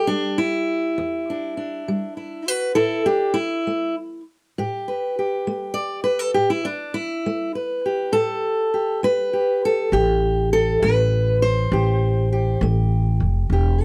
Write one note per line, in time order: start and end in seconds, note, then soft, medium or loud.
0.00 0.09 G3 medium
0.07 0.62 G3 medium
0.07 0.37 D4 loud
0.38 2.16 E4 medium
0.98 1.51 E2 medium
1.30 1.56 D4 medium
1.57 2.47 D4 soft
1.88 2.41 G3 medium
2.17 2.48 E4 soft
2.47 2.75 F#4 medium
2.47 2.75 B4 medium
2.75 3.30 A2 medium
2.75 3.06 E4 medium
2.75 3.05 A4 medium
3.06 3.36 D4 medium
3.06 3.36 G4 medium
3.34 3.94 E4 loud
3.67 4.20 A3 medium
4.58 5.11 A2 medium
4.58 5.18 G4 medium
4.88 5.73 B4 soft
5.19 6.19 G4 soft
5.47 6.00 A3 medium
5.74 6.03 D5 loud
6.04 6.19 B4 loud
6.19 6.34 A4 medium
6.34 6.89 A2 medium
6.34 6.49 G4 medium
6.50 6.65 E4 medium
6.65 6.94 D4 medium
6.94 7.54 E4 medium
7.26 7.79 A3 medium
7.55 8.12 B4 medium
7.86 8.73 G4 soft
8.12 8.67 A2 medium
8.12 9.03 A4 loud
8.74 9.33 G4 soft
9.03 9.57 A3 medium
9.03 9.63 B4 loud
9.33 9.93 G4 soft
9.65 9.94 A4 medium
9.92 10.78 A1 loud
9.92 10.47 A2 medium
9.92 10.52 G4 medium
10.53 10.83 A4 loud
10.82 11.68 A1 loud
10.82 11.37 A3 medium
10.82 11.42 B4 medium
11.42 12.62 C5 loud
11.72 12.57 A1 loud
11.72 12.26 A2 medium
11.72 12.32 G4 soft
12.32 13.52 G4 soft
12.61 13.17 A1 loud
12.61 13.16 A3 medium
13.20 13.48 F1 medium
13.50 13.85 E1 loud
13.50 13.85 E2 medium
13.50 13.81 G4 medium
13.81 13.85 A4 loud